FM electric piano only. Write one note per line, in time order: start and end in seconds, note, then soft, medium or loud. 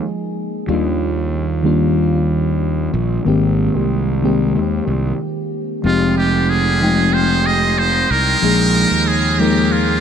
0.00 0.70 F3 medium
0.00 0.70 G#3 medium
0.00 0.68 A#3 medium
0.00 0.71 D#4 medium
0.00 0.70 G#4 medium
0.67 1.61 D#3 medium
0.67 1.61 G3 medium
0.67 1.61 A#3 medium
0.67 1.62 D4 medium
0.67 1.62 F4 loud
1.63 3.22 D#3 medium
1.63 3.22 G3 medium
1.63 3.22 A#3 medium
1.63 3.23 D4 medium
1.63 3.23 F4 loud
3.25 4.19 D#3 medium
3.25 4.19 G#3 medium
3.25 4.19 A#3 medium
3.25 4.20 C4 medium
3.25 4.20 G4 medium
4.22 5.80 D#3 medium
4.22 5.81 G#3 medium
4.22 5.81 A#3 medium
4.22 5.81 C4 medium
4.22 5.82 G4 loud
5.83 6.77 F3 medium
5.83 6.77 G#3 medium
5.83 6.78 C4 medium
5.83 6.78 D#4 medium
5.83 6.78 G4 medium
6.80 8.38 F3 medium
6.80 8.39 G#3 medium
6.80 8.39 C4 medium
6.80 8.40 D#4 medium
6.80 8.40 G5 medium
8.42 9.35 F3 medium
8.42 9.36 G#3 medium
8.42 9.36 A#3 medium
8.42 9.36 D#4 medium
8.42 9.37 G#4 medium
9.39 10.00 F3 medium
9.39 10.00 G#3 medium
9.39 10.00 A#3 medium
9.39 10.00 D#4 medium
9.39 10.00 A#4 medium